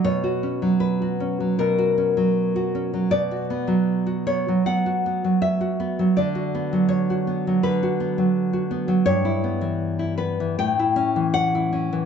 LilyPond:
\new Staff \with { instrumentName = "Nylon-string guitar" } { \time 4/4 \key b \minor \tempo 4 = 80 << { cis''4 b'4 ais'2 | d''4. cis''8 fis''4 e''4 | d''4 cis''4 b'2 | \key e \dorian cis''4. b'8 g''4 fis''4 | } \\ { b,16 fis'16 cis'16 fis8 fis'16 cis'16 fis16 b,16 fis'16 cis'16 fis8 fis'16 cis'16 fis16 | b,16 fis'16 b16 fis8 fis'16 b16 fis16 b16 fis'16 b16 fis8 fis'16 b16 fis16 | d16 fis'16 b16 fis8 fis'16 b16 fis16 d16 fis'16 b16 fis8 fis'16 b16 fis16 | g,16 e'16 b16 e8 e'16 b16 e16 a,16 e'16 cis'16 e8 e'16 cis'16 e16 | } >> }